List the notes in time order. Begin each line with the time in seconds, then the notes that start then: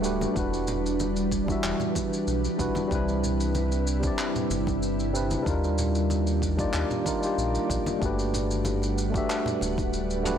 Already playing: D1 G3 A3 D4 F#4 G4 B4 E5 F#5
0.02 A3 D4 F#4 G4 B4, shaker
0.21 high conga, shaker
0.32 E1 G3 D4 E4, kick
0.36 E3 G3 F#4 B4, shaker
0.54 shaker
0.67 low conga, shaker
0.86 shaker
1.00 high conga, shaker
1.16 shaker
1.32 kick, shaker
1.44 G3 D4 E4, kick, high bongo
1.50 F#4 E5, shaker
1.63 E1, clap, shaker
1.80 low conga, shaker
1.95 kick, high conga, shaker
2.13 shaker
2.27 B1, shaker
2.45 shaker
2.57 B1 G3 D4 E4 F#4 B4, kick, shaker
2.75 high bongo, high conga, shaker
2.88 C2 G3 C4 D4 E4, kick
2.92 C3 E4 B4, shaker
3.08 shaker
3.23 low conga, shaker
3.40 shaker
3.55 high conga, shaker
3.72 high bongo, shaker
3.87 shaker
4.00 G3 C4 D4, kick, high bongo, shaker
4.05 E4 D5
4.19 clap, shaker
4.36 high bongo, low conga, shaker
4.50 G1, high conga, shaker
4.67 kick, high bongo, shaker
4.83 shaker
4.99 shaker
5.13 G3 C4 D4 E4 B4, shaker
5.31 high conga, shaker
5.43 D#2 D#3 G3 A#3 D4 D#4 G4 D5, kick, shaker
5.48 F4 A#4
5.64 shaker
5.78 low conga, shaker
5.95 shaker
6.10 high conga, shaker
6.27 shaker
6.42 kick, shaker
6.57 G3 D4 D#4 F4 D5, kick, high bongo, shaker
6.73 D#2, clap, shaker
6.91 low conga, shaker
7.04 G3 D4 D#4 F4 A#4, kick, high conga, shaker
7.19 G3 D4 D#4
7.23 F4 G4, shaker
7.38 A#1, shaker
7.55 shaker
7.70 A#1, kick, shaker
7.86 high bongo, high conga, shaker
7.98 G1 G3 A3 D4 F#4 B4 F#5, kick, shaker
8.04 G4 B4
8.19 shaker
8.34 low conga, shaker
8.51 shaker
8.65 high conga, shaker
8.82 high bongo, shaker
8.98 shaker
9.10 A3 D4 F#4, kick
9.14 G4 E5, high bongo, shaker
9.30 clap, shaker
9.46 high bongo, low conga, shaker
9.61 D1, high conga, shaker
9.78 kick, high bongo, shaker
9.93 shaker
10.10 shaker
10.23 A3 D4 F#4 G4 B4, mid tom, shaker